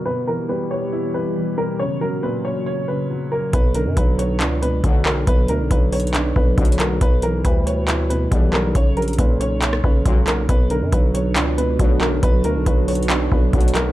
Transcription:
<<
  \new Staff \with { instrumentName = "Grand piano" } { \time 4/4 \key b \minor \tempo 4 = 138 b'8 ais'8 b'8 cis''4 b'4 ais'8 | cis''8 ais'8 b'8 cis''4 b'4 ais'8 | b'8 ais'8 b'8 cis''4 b'4 ais'8 | b'8 ais'8 b'8 cis''4 b'4 ais'8 |
b'8 ais'8 b'8 cis''4 b'4 ais'8 | cis''8 ais'8 b'8 cis''4 b'4 ais'8 | b'8 ais'8 b'8 cis''4 b'4 ais'8 | b'8 ais'8 b'8 cis''4 b'4 ais'8 | }
  \new Staff \with { instrumentName = "Ambient pad" } { \clef bass \time 4/4 \key b \minor <b, e g b g'>1 | <ais, cis fis fis'>1 | r1 | r1 |
r1 | r1 | <fis b d' fis'>1~ | <fis b d' fis'>1 | }
  \new Staff \with { instrumentName = "Felt piano" } { \clef bass \time 4/4 \key b \minor b,8 e8 g8 b8 e'8 b,8 e8 g8 | cis8 fis8 ais,8 cis'8 cis''8 cis8 fis8 ais8 | b,8 d8 fis8 b8 d'8 b,8 d8 fis8 | b,8 d8 fis8 b8 d'8 b,8 d8 fis8 |
b,8 e8 g8 b8 e'8 b,8 e8 g8 | cis8 fis8 ais,8 cis'8 cis''8 cis8 fis8 ais8 | b,8 d8 fis8 b8 d'8 b,8 d8 fis8 | b,8 d8 fis8 b8 d'8 b,8 d8 fis8 | }
  \new Staff \with { instrumentName = "Brass ensemble" } { \clef bass \time 4/4 \key b \minor r1 | r1 | r2. <d, b, fis>4 | r2. <d, b, fis>4 |
r2. <e, b, g>4 | r2. <cis, ais, fis>4 | r2. <d, b, fis>4 | r2. <d, b, fis>4 | }
  \new Staff \with { instrumentName = "808-style bass" } { \clef bass \time 4/4 \key b \minor r1 | r1 | b,,8. fis,16 b,,4 cis,4 b,,4 | b,,8 d,16 b,,16 b,,4. b,,8 b,,4 |
b,,4 d,2 b,,4 | b,,8 ais,,8 b,,4. b,,8 b,,4 | b,,8. fis,16 b,,4 cis,4 b,,4 | b,,8 d,16 b,,16 b,,4. b,,8 b,,4 | }
  \new DrumStaff \with { instrumentName = "Drums" } \drummode { \time 4/4 r4 r4 r4 r4 | r4 r4 r4 r4 | <hh bd>8 hh8 <hh bd>8 hh8 <hc hh>8 hh8 <hh bd>8 hc8 | <hh bd>8 hh8 \tuplet 3/2 { <hh bd>16 r16 r16 <hh hho>16 hh16 hh16 } <hc hh>8 bd8 \tuplet 3/2 { <hh bd>16 hh16 hh16 <hc hh>16 r16 r16 } |
<hh bd>8 hh8 <hh bd>8 hh8 <hc hh>8 hh8 <hh bd>8 hc8 | <hh bd>8 hh32 hh32 hh32 hh32 <hh bd>8 hh8 <hc hh>16 ss16 bd8 <hh bd>8 <hc hh>8 | <hh bd>8 hh8 <hh bd>8 hh8 <hc hh>8 hh8 <hh bd>8 hc8 | <hh bd>8 hh8 \tuplet 3/2 { <hh bd>16 r16 r16 <hh hho>16 hh16 hh16 } <hc hh>8 bd8 \tuplet 3/2 { <hh bd>16 hh16 hh16 <hc hh>16 r16 r16 } | }
>>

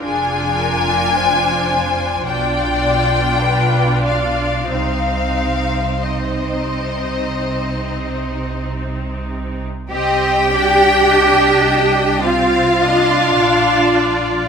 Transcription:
<<
  \new Staff \with { instrumentName = "Violin section" } { \time 4/4 \key c \minor \tempo 4 = 51 aes''2 g''4. f''8 | f''4 ees''2 r4 | ees''8 d''8 ees''4 f''8 ees''8 d''4 | }
  \new Staff \with { instrumentName = "Violin section" } { \time 4/4 \key c \minor aes'8 bes'8 c''4 d''4 b'8 d''8 | c''2.~ c''8 r8 | g''2 f''2 | }
  \new Staff \with { instrumentName = "Viola section" } { \time 4/4 \key c \minor <d' f'>2 <d' f'>2 | <c' ees'>4 <c' ees'>2. | c'8 d'4. c'8 d'4. | }
  \new Staff \with { instrumentName = "Cello section" } { \clef bass \time 4/4 \key c \minor f,2 b,2 | c1 | g'2 f'2 | }
  \new Staff \with { instrumentName = "Double bass section" } { \clef bass \time 4/4 \key c \minor f,,2 b,,2 | c,1 | c,2. bes,,4 | }
>>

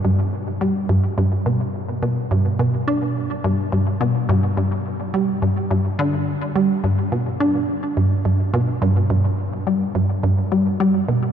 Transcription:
\new Staff \with { instrumentName = "Synth arpeggio sound" } { \clef bass \time 4/4 \key g \mixolydian \tempo 4 = 106 g,16 r8. g8 g,8 g,8 b,8 r8 b,16 r16 | g,16 r16 b,8 d'8 r8 g,16 r16 g,16 r16 b,16 r16 g,8 | g,16 r8. g8 g,8 g,8 d8 r8 g16 r16 | g,16 r16 b,8 d'8 r8 g,16 r16 g,16 r16 b,16 r16 g,8 |
g,16 r8. g8 g,8 g,8 g8 g8 b,8 | }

